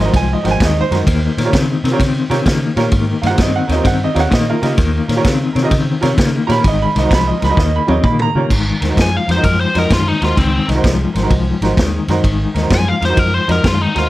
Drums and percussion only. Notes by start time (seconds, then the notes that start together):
0.14 kick, snare, ride
0.45 snare, ride
0.60 kick, snare, ride
0.92 snare, ride
1.07 kick, ride
1.38 snare, ride
1.53 kick, snare, ride
1.85 snare, ride
2.00 kick, snare, ride
2.31 snare, ride
2.46 kick, snare, ride
2.77 snare, ride
2.91 kick, ride
3.23 snare, ride
3.38 kick, snare, ride
3.69 snare, ride
3.85 kick, snare, ride
4.16 snare, ride
4.32 kick, snare, ride
4.63 snare, ride
4.78 kick, snare, ride
5.09 snare, ride
5.24 kick, snare, ride
5.56 snare, ride
5.71 kick, snare, ride
6.02 snare, ride
6.18 kick, snare, ride
6.49 snare, ride
6.64 kick, snare, ride
6.96 snare, ride
7.11 kick, snare, ride
7.42 snare, ride
7.57 kick, snare
7.88 high tom
8.03 kick, mid tom
8.19 mid tom
8.50 kick, crash
8.82 snare, ride
8.97 kick, snare, ride
9.29 snare, ride
9.44 kick, ride
9.75 snare, ride
9.90 kick, snare, ride
10.22 snare, ride
10.37 kick, snare, ride
10.69 snare, ride
10.84 kick, snare, ride
11.15 snare, ride
11.30 kick, ride
11.62 snare, ride
11.77 kick, snare, ride
12.08 snare, ride
12.24 kick, ride
12.55 snare, ride
12.70 kick, snare, ride
13.02 snare, ride
13.17 kick, ride
13.49 snare, ride
13.64 kick, snare, ride
13.96 snare, ride